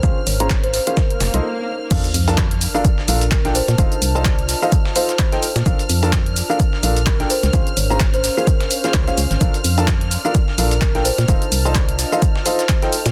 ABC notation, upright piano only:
X:1
M:4/4
L:1/16
Q:"Swing 16ths" 1/4=128
K:Bb
V:1 name="Upright piano"
[_DF_Acf] z2 [DFAcb] z3 [DFAcf] z3 [EF=Acf] z4 | [DFABf] z2 [DFABa] z3 [DFABf] z2 [DFABf] z2 [DFABg] z2 | [EFAcf] z2 [EFAca] z3 [EFAcf] z2 [EFAcf] z2 [EFAcg] z2 | [DFABf] z2 [DFABa] z3 [DFABf] z2 [DFABf] z2 [DFABg] z2 |
[_DF_Acf] z2 [DFAcb] z3 [DFAcf] z3 [DFAcf]2 [DFAcf] z2 | [DFABf] z2 [DFABa] z3 [DFABf] z2 [DFABf] z2 [DFABg] z2 | [EFAcf] z2 [EFAca] z3 [EFAcf] z2 [EFAcf] z2 [EFAcg] z2 |]